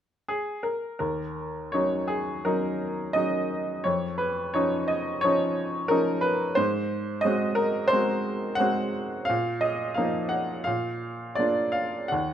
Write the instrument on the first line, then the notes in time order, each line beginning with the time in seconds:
grand piano
0.28 G#4
0.63 A#4
0.99 D#2 A#4
1.72 F#3 C#4 D#4 C#5
2.08 G#4
2.45 F#3 C#4 D#4 A#4
3.13 F#3 C#4 D#4 D#5
3.84 F2 C#5
4.18 B4
4.54 F3 C#4 D#4 C#5
4.88 D#5
5.21 F3 C#4 D#4 C#5
5.88 F3 C#4 D#4 A#4
6.21 B4
6.55 G#2 C5
7.21 G#3 D#5
7.25 C4 F#4
7.55 A#4
7.88 C5
7.93 G#3 C4 F#4
8.55 F#5
8.60 G#3 C4 F#4
9.25 F5
9.29 A#2
9.61 D#5
9.94 F3 A#3 D#4 F5
10.29 F#5
10.64 A#2 F5
11.35 A#3 D4 D5
11.40 F4
11.72 F5
12.08 D#2 F#5